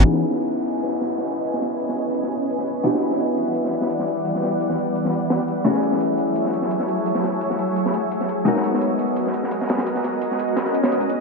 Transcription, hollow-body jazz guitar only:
X:1
M:4/4
L:1/8
Q:1/4=171
K:C#m
V:1 name="Hollow-body jazz guitar"
[E,B,CDEG]8- | [E,B,CDEG]8 | [B,=DEF=G]8- | [B,=DEF=G]8 |
[A,CEFG]8- | [A,CEFG]8 | [G,B,DF^A]8- | [G,B,DF^A]8 |]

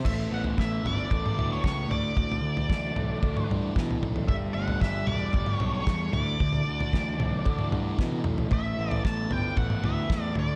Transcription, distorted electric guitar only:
X:1
M:4/4
L:1/8
Q:1/4=114
K:D
V:1 name="Distorted electric guitar"
A, B, A, B, A E A, D, | D, A, E, A, A D E, A, | G, A, G, A, G D G, D, | D, A, E, A, A D E, A, |
A, B, A, B, A E A, D, |]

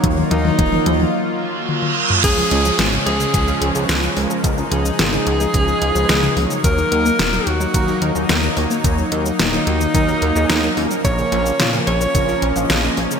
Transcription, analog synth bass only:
X:1
M:4/4
L:1/16
Q:1/4=109
K:Ebm
V:1 name="Analog synth bass" clef=bass
E,, z E,, z E,,, z E,, z8 z | D,, z D,, z A,,, z D,, z D,, z D,, D,, D,, z D,, z | D,, z D,, z A,,, z D,, z D,, z D,, D,, D,, z D,, z | E,, z E,, z E,,, z E,, z E,, z E,, E,, E,, z E,, z |
E,, z E,, z E,,, z E,, z E,, z E,, E,, E,, z E,, z | B,,, z B,,, z B,, z B,,, z B,,, z B,,, B,,, B,,, z B,,, z |]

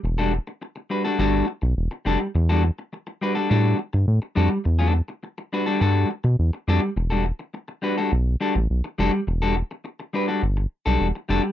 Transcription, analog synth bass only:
X:1
M:4/4
L:1/16
Q:1/4=104
K:Em
V:1 name="Analog synth bass" clef=bass
E,,,3 z4 z G,,,2 z B,,, E,,, z =F,,, z | E,,3 z4 z A,,2 z G,, A,, z =F,, z | E,,3 z4 z G,,2 z B,, E,, z =F,, z | E,,,3 z4 z B,,,2 z A,,, B,,, z =F,,, z |
E,,,3 z4 z G,,,2 z B,,, E,,, z =F,,, z |]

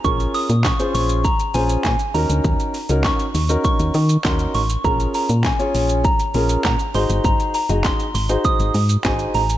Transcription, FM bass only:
X:1
M:4/4
L:1/16
Q:1/4=100
K:Bbm
V:1 name="FM bass" clef=bass
B,,,2 z B,,2 z B,,,3 z B,,,2 B,, z E,, =D,, | E,, z2 D,,2 z E,,2 z E,, E,2 E,,2 =A,,,2 | B,,,2 z B,,2 z B,,,3 z B,,,2 B,, z A,,, =G,,, | A,,, z2 G,,,2 z A,,,2 z A,,, A,,2 A,,,2 =A,,,2 |]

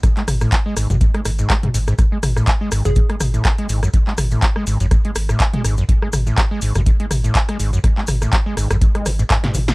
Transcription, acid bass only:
X:1
M:4/4
L:1/16
Q:"Swing 16ths" 1/4=123
K:Alyd
V:1 name="Acid bass" clef=bass
G,, G, z A,, z G, G,, F,, G,, G, G,, G,, G, G,, G,, G,, | G,, G, z A,, z G, G,, F,, G,, G, z A,, z G, G,, F,, | G,, G, z A,, z G, G,, F,, G,, G, z A,, z G, G,, F,, | G,, G, z A,, z G, G,, F,, G,, G, z A,, z G, G,, F,, |
G,, G, z A,, z G, G,, F,, G,, G, G,, G,, G,, G,, F, B,, |]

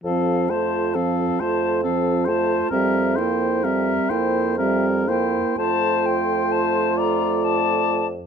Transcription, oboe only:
X:1
M:6/8
L:1/8
Q:3/8=44
K:F
V:1 name="Oboe"
A c A c A c | B c B c B c | c3 d3 |]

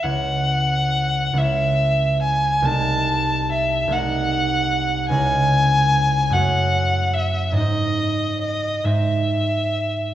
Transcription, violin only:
X:1
M:6/8
L:1/8
Q:3/8=47
K:C#m
V:1 name="Violin"
f3 e2 g | a2 e _g3 | g3 f2 e | d2 d e3 |]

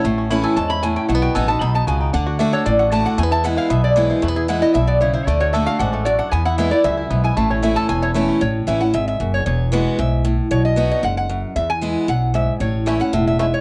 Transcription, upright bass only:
X:1
M:4/4
L:1/8
Q:1/4=230
K:A
V:1 name="Upright bass" clef=bass
A,,,4 E,,4 | B,,,2 A,,,2 B,,,2 C,,2 | D,,4 A,,,4 | E,,4 B,,,4 |
E,,4 B,,,4 | D,,4 A,,,4 | E,,4 C,,2 B,,,2 | A,,,4 E,,,4 |
A,,,2 A,,,2 G,,,2 F,,,2 | E,,,4 B,,,4 | B,,,4 F,,,4 | E,,4 B,,,4 |
A,,,4 E,,,4 |]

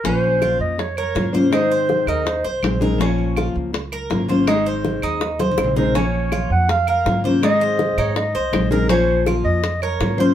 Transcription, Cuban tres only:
X:1
M:4/4
L:1/8
Q:1/4=163
K:Bbm
V:1 name="Cuban tres"
D2 F z2 B2 c | E c2 E2 c2 B | D2 F z2 B2 c | E c2 E2 c2 B |
D2 F z2 B2 c | E c2 E2 c2 B | D2 F z2 B2 c |]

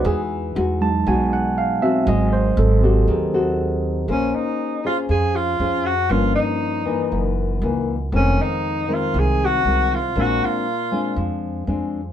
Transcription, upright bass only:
X:1
M:4/4
L:1/8
Q:1/4=119
K:G#phr
V:1 name="Upright bass" clef=bass
E,,2 E,,2 B,,,4 | G,,,2 G,,,2 D,,4 | [K:Bbm] B,,, z3 F,,2 F,,2 | =G,,, z3 _G,,,2 D,,2 |
F,,, z3 C,,2 C,,2 | B,,, z3 F,,2 F,,2 |]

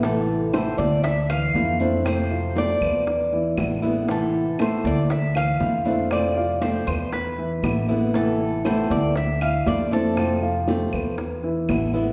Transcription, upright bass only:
X:1
M:4/4
L:1/8
Q:1/4=118
K:Am
V:1 name="Upright bass" clef=bass
A,,,3 D,,3 F,,2- | F,,3 E,,3 A,,,2- | A,,,3 D,,3 F,,2- | F,,3 E,,3 A,,,2- |
A,,,3 D,,3 F,,2- | F,,3 E,,3 A,,,2 |]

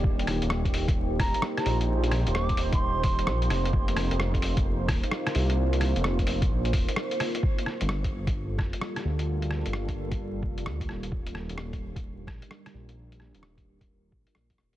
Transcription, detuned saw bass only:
X:1
M:4/4
L:1/16
Q:"Swing 16ths" 1/4=130
K:Gm
V:1 name="Detuned saw bass" clef=bass
E,,,3 E,,,6- E,,, E,,, z3 B,,,2- | B,,,3 E,,,6- E,,, E,,,2 B,,,2 F,,,2- | F,,,3 F,,,6- F,,, E,,, z3 C,,2- | C,,3 F,,,4- F,,, B,,,2 E,,, z4 z |
z3 G,,,6- G,,, F,,, z3 D,,2- | D,,3 G,,,6- G,,, F,,,2 D,,2 E,,,2- | E,,,3 E,,,6- E,,, B,,, z3 B,,,2- | B,,,3 E,,,6- E,,, B,,, z B,,,2 E,,,2 |]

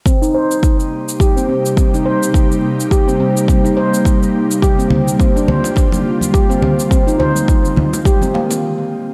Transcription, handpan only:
X:1
M:4/4
L:1/16
Q:"Swing 16ths" 1/4=105
K:Cm
V:1 name="Handpan"
C E c4 z2 G C C2 C E c2- | c2 z2 G C C2 C E c4 z2 | G C C2 C D c4 z2 G C C2 | C E c4 z2 G C B, z4 z |]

